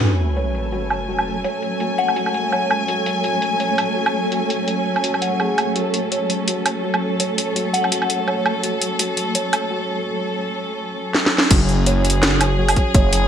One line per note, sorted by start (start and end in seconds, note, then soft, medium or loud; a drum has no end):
0.01 11.47 F#3 medium
0.01 10.07 A3 medium
0.01 11.47 C#4 medium
0.01 0.18 F#4 medium
0.01 10.08 A4 medium
0.01 5.74 G#5 medium
0.01 closed hi-hat medium
0.01 sub drop medium
0.19 closed hi-hat medium
0.37 0.48 C#5 medium
0.37 closed hi-hat medium
0.55 closed hi-hat medium
0.72 1.07 F#4 medium
0.72 closed hi-hat medium
0.90 closed hi-hat medium
0.90 low woodblock medium
1.09 1.26 F#4 medium
1.19 low woodblock medium
1.44 1.56 C#5 medium
1.44 closed hi-hat medium
1.62 closed hi-hat medium
1.80 2.15 F#4 medium
1.80 closed hi-hat medium
1.98 2.35 F#5 medium
1.98 closed hi-hat medium
2.08 low woodblock soft
2.16 2.34 F#4 medium
2.16 closed hi-hat medium
2.26 low woodblock soft
2.34 closed hi-hat medium
2.52 2.64 C#5 medium
2.52 low woodblock soft
2.71 low woodblock medium
2.88 3.23 F#4 medium
2.88 closed hi-hat medium
3.06 closed hi-hat medium
3.24 3.42 F#4 medium
3.24 closed hi-hat medium
3.42 closed hi-hat medium
3.60 3.71 C#5 medium
3.60 closed hi-hat medium
3.78 closed hi-hat medium
3.78 low woodblock soft
3.96 4.31 F#4 medium
4.06 low woodblock medium
4.32 4.49 F#4 medium
4.32 closed hi-hat medium
4.50 closed hi-hat medium
4.68 4.79 C#5 medium
4.68 closed hi-hat medium
4.96 low woodblock soft
5.04 5.20 F#4 medium
5.04 closed hi-hat medium
5.14 low woodblock soft
5.22 5.38 F#5 medium
5.22 closed hi-hat medium
5.40 5.56 G#4 medium
5.40 low woodblock soft
5.58 closed hi-hat soft
5.58 low woodblock soft
5.75 5.93 F#4 medium
5.75 11.49 A4 medium
5.75 closed hi-hat medium
5.94 closed hi-hat medium
6.12 6.23 C#5 medium
6.12 closed hi-hat medium
6.30 closed hi-hat medium
6.48 6.82 F#4 medium
6.48 closed hi-hat medium
6.66 closed hi-hat medium
6.66 low woodblock soft
6.84 7.01 F#4 medium
6.94 low woodblock soft
7.20 7.31 C#5 medium
7.20 closed hi-hat medium
7.38 closed hi-hat medium
7.56 7.90 F#4 medium
7.56 closed hi-hat medium
7.74 8.10 F#5 medium
7.74 closed hi-hat medium
7.84 low woodblock soft
7.92 8.09 F#4 medium
7.92 closed hi-hat medium
8.02 low woodblock soft
8.10 closed hi-hat medium
8.28 8.39 C#5 medium
8.28 low woodblock soft
8.46 low woodblock soft
8.63 8.98 F#4 medium
8.63 closed hi-hat medium
8.82 closed hi-hat medium
8.99 9.17 F#4 medium
8.99 closed hi-hat medium
9.17 closed hi-hat medium
9.35 9.46 C#5 medium
9.35 closed hi-hat medium
9.53 closed hi-hat medium
9.53 low woodblock medium
9.71 10.05 F#4 medium
11.15 snare medium
11.26 snare medium
11.38 snare medium
11.51 12.76 F#1 loud
11.51 13.28 F#3 medium
11.51 13.28 C#4 medium
11.51 11.68 F#4 medium
11.51 13.28 G#4 loud
11.51 kick loud
11.51 closed hi-hat medium
11.51 crash loud
11.69 open hi-hat soft
11.86 11.98 C#5 medium
11.86 closed hi-hat medium
12.05 closed hi-hat soft
12.10 closed hi-hat medium
12.23 12.57 F#4 medium
12.23 snare loud
12.23 closed hi-hat medium
12.41 closed hi-hat medium
12.41 low woodblock medium
12.59 12.76 F#4 medium
12.69 open hi-hat medium
12.69 low woodblock medium
12.76 kick medium
12.76 closed hi-hat soft
12.95 13.28 F#1 loud
12.95 13.06 C#5 medium
12.95 kick loud
12.95 closed hi-hat medium
13.13 closed hi-hat medium